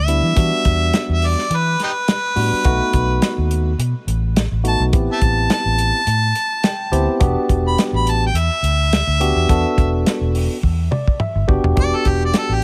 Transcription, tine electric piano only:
0.08 G3 B3 D4 E4
0.36 G3 B3 D4 F#4
2.36 G3 B3 D4 F#4
2.64 A3 B3 D#4 F#4
4.64 A3 B3 D#4 F#4
4.93 B3 C4 E4 G4
6.64 G5
6.92 B3 C4 E4 G4 C5
7.20 B3 D4 F#4 G4
9.20 B3 D4 F#4 G4
9.49 B3 D4 F#4 A4
10.91 D5
11.20 E5
11.48 B3 D4 F#4 G4 G5
11.76 B3 D4 F#4 G4

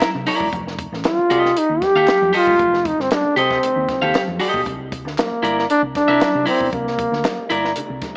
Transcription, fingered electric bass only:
0.15 C3
0.41 E1
0.53 F1
0.92 A1
1.19 muted fingered electric bass stroke
1.31 C2
1.70 D#2
1.95 D#2
2.22 F2
2.47 E1
2.59 F1
2.99 G1
3.24 muted fingered electric bass stroke
3.37 C2
3.76 D#2
4.02 D#2
4.28 F2
4.54 B1
4.67 C2
5.05 D2
5.31 muted fingered electric bass stroke
5.43 G1
5.83 C2
6.08 C2
6.35 C3
6.61 B1
6.73 C2
7.12 D2
7.39 muted fingered electric bass stroke
7.51 G1
7.90 C2

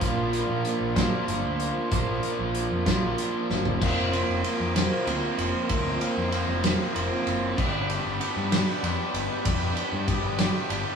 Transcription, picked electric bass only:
0.02 A#1
0.49 A#2
0.80 A#1
0.96 A#2
1.28 G1
1.44 D2
1.92 A#1
2.39 A#1
2.71 F2
2.87 A#1
3.51 G1
3.82 F1
4.29 F1
4.60 F2
5.07 D2
5.38 F1
5.70 D2
6.17 F2
6.48 F1
6.96 F1
7.27 F#1
7.58 G1
8.05 G1
8.36 G2
8.83 F2
9.14 G1
9.46 F2
9.92 G2
10.23 G1
10.70 G1

